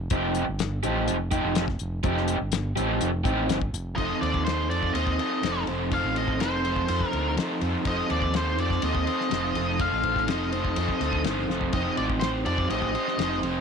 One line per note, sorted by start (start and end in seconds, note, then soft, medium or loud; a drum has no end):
0.10 0.42 F1 loud
0.10 0.43 F3 medium
0.10 0.43 C4 medium
0.10 0.43 D#4 medium
0.10 0.43 G4 loud
0.10 kick loud
0.10 closed hi-hat medium
0.35 closed hi-hat medium
0.48 0.79 G1 medium
0.59 snare loud
0.59 closed hi-hat medium
0.83 1.05 A1 medium
0.83 1.15 F3 medium
0.83 1.15 C4 medium
0.83 1.15 D#4 medium
0.83 1.15 G4 medium
0.83 closed hi-hat medium
1.08 1.39 F1 medium
1.08 closed hi-hat medium
1.31 1.64 F3 medium
1.31 1.63 C4 medium
1.31 1.63 D#4 medium
1.31 1.63 G4 medium
1.31 kick medium
1.31 closed hi-hat medium
1.45 1.75 F1 medium
1.55 snare loud
1.55 closed hi-hat medium
1.68 kick medium
1.68 snare soft
1.79 2.01 F1 medium
1.79 closed hi-hat medium
2.03 2.35 F1 medium
2.03 2.35 F3 medium
2.03 2.36 C4 medium
2.03 2.36 D#4 medium
2.03 2.36 G4 loud
2.03 kick loud
2.03 closed hi-hat medium
2.17 snare soft
2.28 closed hi-hat medium
2.41 2.72 G1 medium
2.52 snare loud
2.52 closed hi-hat medium
2.76 2.97 A1 medium
2.76 3.08 F3 medium
2.76 3.08 C4 medium
2.76 3.08 D#4 medium
2.76 3.08 G4 medium
2.76 closed hi-hat medium
3.01 3.21 F1 medium
3.01 closed hi-hat medium
3.24 3.47 A1 medium
3.24 3.57 F3 medium
3.24 3.57 C4 medium
3.24 3.57 D#4 medium
3.24 3.56 G4 medium
3.24 kick medium
3.24 closed hi-hat medium
3.49 3.72 G1 medium
3.49 snare loud
3.49 closed hi-hat medium
3.62 kick medium
3.73 3.95 F1 medium
3.73 closed hi-hat medium
3.96 4.08 F1 medium
3.96 4.49 F3 medium
3.96 4.44 C4 medium
3.96 4.23 D#4 medium
3.96 4.22 A4 medium
3.96 4.21 C5 medium
3.96 4.21 D#5 loud
3.96 kick medium
3.96 ride medium
4.21 4.70 D#2 medium
4.21 4.45 D#4 soft
4.21 4.46 A4 medium
4.21 4.47 C5 medium
4.21 4.44 D5 medium
4.21 ride medium
4.34 kick medium
4.44 4.70 C4 medium
4.44 4.70 D#4 medium
4.44 4.69 A4 medium
4.44 4.68 C5 medium
4.44 snare medium
4.44 ride medium
4.69 4.91 F2 medium
4.69 5.23 F3 medium
4.69 4.93 C4 medium
4.69 4.94 D#4 medium
4.69 4.95 A4 medium
4.69 4.95 C5 medium
4.69 4.94 D5 medium
4.69 ride medium
4.83 kick medium
4.93 5.15 D#2 medium
4.93 5.43 C4 medium
4.93 5.20 D#4 medium
4.93 5.18 A4 medium
4.93 5.17 C5 medium
4.93 5.63 D#5 medium
4.93 ride medium
5.07 kick medium
5.18 5.43 D#4 medium
5.18 5.44 A4 medium
5.18 5.44 C5 medium
5.18 ride medium
5.42 5.64 F1 medium
5.42 5.90 F3 medium
5.42 5.91 C4 medium
5.42 5.68 D#4 medium
5.42 5.67 A4 loud
5.42 5.66 C5 loud
5.42 snare medium
5.42 ride medium
5.66 5.98 F1 medium
5.66 5.91 D#4 medium
5.66 5.92 A4 medium
5.66 5.92 C5 medium
5.66 ride medium
5.90 6.43 F3 medium
5.90 6.39 C4 medium
5.90 6.17 D#4 medium
5.90 6.15 A4 loud
5.90 6.14 C5 medium
5.90 6.16 F5 loud
5.90 kick loud
5.90 ride medium
6.04 6.35 A1 medium
6.14 6.40 D#4 medium
6.14 6.40 A4 medium
6.14 6.41 C5 medium
6.14 6.41 D#5 medium
6.14 ride medium
6.28 kick medium
6.39 6.82 F1 medium
6.39 6.65 C4 medium
6.39 6.64 D#4 medium
6.39 6.64 A4 medium
6.39 6.63 C5 medium
6.39 7.07 C5 medium
6.39 snare loud
6.39 ride medium
6.63 7.17 F3 medium
6.63 6.87 C4 medium
6.63 6.88 D#4 medium
6.63 6.89 A4 medium
6.63 6.89 C5 medium
6.63 ride medium
6.76 kick medium
6.87 6.99 F2 medium
6.87 7.36 C4 medium
6.87 7.14 D#4 medium
6.87 7.12 A4 medium
6.87 7.11 C5 medium
6.87 ride medium
7.01 kick medium
7.07 7.34 A#4 medium
7.11 7.34 D2 medium
7.11 7.37 D#4 medium
7.11 7.37 A4 medium
7.11 7.38 C5 medium
7.11 ride medium
7.36 7.85 F3 medium
7.36 7.85 C4 medium
7.36 7.62 D#4 loud
7.36 7.61 A4 medium
7.36 7.60 C5 medium
7.36 snare medium
7.36 ride medium
7.60 7.72 F2 medium
7.60 7.86 D#4 medium
7.60 7.86 A4 medium
7.60 7.87 C5 medium
7.60 ride medium
7.85 7.96 F1 medium
7.85 8.38 F3 medium
7.85 8.33 C4 medium
7.85 8.11 D#4 loud
7.85 8.10 A4 loud
7.85 8.09 C5 loud
7.85 8.11 D#5 medium
7.85 kick loud
7.85 ride medium
8.09 8.58 D#2 medium
8.09 8.34 D#4 medium
8.09 8.35 A4 medium
8.09 8.36 C5 medium
8.09 8.33 D5 medium
8.09 ride medium
8.22 kick medium
8.34 8.59 C4 medium
8.34 8.58 D#4 medium
8.34 8.58 A4 medium
8.34 8.57 C5 medium
8.34 8.60 C5 medium
8.34 snare loud
8.34 ride medium
8.57 8.79 F2 medium
8.57 9.08 F3 medium
8.57 8.81 C4 medium
8.57 8.82 D#4 medium
8.57 8.82 A4 medium
8.57 8.84 C5 medium
8.57 8.82 D5 medium
8.57 ride medium
8.70 kick medium
8.70 snare soft
8.82 9.03 D#2 medium
8.82 9.30 C4 medium
8.82 9.08 D#4 medium
8.82 9.06 A4 medium
8.82 9.05 C5 medium
8.82 9.84 D#5 medium
8.82 ride medium
8.95 kick medium
9.05 9.31 D#4 medium
9.05 9.30 A4 medium
9.05 9.32 C5 medium
9.05 ride medium
9.21 snare soft
9.30 9.52 F1 medium
9.30 9.78 F3 medium
9.30 9.79 C4 medium
9.30 9.57 D#4 medium
9.30 9.55 A4 medium
9.30 9.55 C5 medium
9.30 snare medium
9.30 ride medium
9.55 9.86 F1 medium
9.55 9.80 D#4 medium
9.55 9.79 A4 medium
9.55 9.81 C5 medium
9.55 ride medium
9.79 10.28 F3 medium
9.79 10.26 C4 medium
9.79 10.05 D#4 medium
9.79 10.03 A4 medium
9.79 10.03 C5 medium
9.79 10.31 F5 medium
9.79 kick medium
9.79 ride medium
9.92 10.23 A1 medium
10.03 10.28 D#4 medium
10.03 10.28 A4 medium
10.03 10.29 C5 medium
10.03 kick medium
10.03 ride medium
10.16 kick medium
10.16 snare soft
10.27 10.69 F1 medium
10.27 10.53 C4 medium
10.27 10.53 D#4 medium
10.27 10.51 A4 medium
10.27 10.52 C5 medium
10.27 11.22 D#5 medium
10.27 snare loud
10.27 ride medium
10.52 11.02 F3 medium
10.52 10.76 C4 medium
10.52 10.77 D#4 medium
10.52 10.77 A4 medium
10.52 10.78 C5 medium
10.52 ride medium
10.65 kick medium
10.76 10.87 F2 medium
10.76 11.24 C4 medium
10.76 11.02 D#4 medium
10.76 11.00 A4 medium
10.76 11.00 C5 medium
10.76 ride medium
10.89 kick medium
11.00 11.21 D2 medium
11.00 11.25 D#4 soft
11.00 11.24 A4 medium
11.00 11.26 C5 medium
11.00 snare soft
11.00 ride medium
11.13 kick medium
11.24 11.47 G1 medium
11.24 11.72 F3 medium
11.24 11.73 C4 medium
11.24 11.51 D#4 medium
11.24 11.49 A4 medium
11.24 11.49 C5 loud
11.24 snare loud
11.24 ride medium
11.49 11.71 F1 medium
11.49 11.74 D#4 medium
11.49 11.73 A4 medium
11.49 11.75 C5 medium
11.49 snare soft
11.61 floor tom medium
11.73 11.84 F1 medium
11.73 12.22 F3 medium
11.73 12.20 C4 medium
11.73 11.99 D#4 medium
11.73 11.98 G4 medium
11.73 11.96 C5 medium
11.73 11.96 D#5 loud
11.73 kick loud
11.73 ride medium
11.97 12.46 A1 medium
11.97 12.21 D#4 medium
11.97 12.22 G4 medium
11.97 12.22 C5 medium
11.97 12.04 D5 medium
11.97 ride medium
12.10 kick medium
12.20 12.46 C4 medium
12.20 12.46 D#4 medium
12.20 12.45 G4 medium
12.20 12.27 C5 medium
12.20 12.44 C5 medium
12.20 snare loud
12.20 ride medium
12.45 12.67 F2 medium
12.45 12.95 F3 medium
12.45 12.68 C4 medium
12.45 12.69 D#4 medium
12.45 12.70 G4 medium
12.45 12.70 C5 medium
12.45 12.69 D5 medium
12.45 ride medium
12.58 kick medium
12.69 12.91 A1 medium
12.69 13.17 C4 medium
12.69 12.95 D#4 medium
12.69 12.94 G4 medium
12.69 12.93 C5 medium
12.69 13.39 D#5 medium
12.69 ride medium
12.82 kick medium
12.93 13.18 D#4 medium
12.93 13.18 G4 medium
12.93 13.19 C5 medium
12.93 ride medium
13.08 snare soft
13.17 13.39 F1 medium
13.17 13.61 F3 medium
13.17 13.61 C4 medium
13.17 13.43 D#4 medium
13.17 13.42 G4 medium
13.17 13.41 C5 medium
13.17 snare loud
13.17 ride medium
13.42 13.61 F1 medium
13.42 13.61 D#4 medium
13.42 13.61 G4 medium
13.42 13.61 C5 medium
13.42 ride medium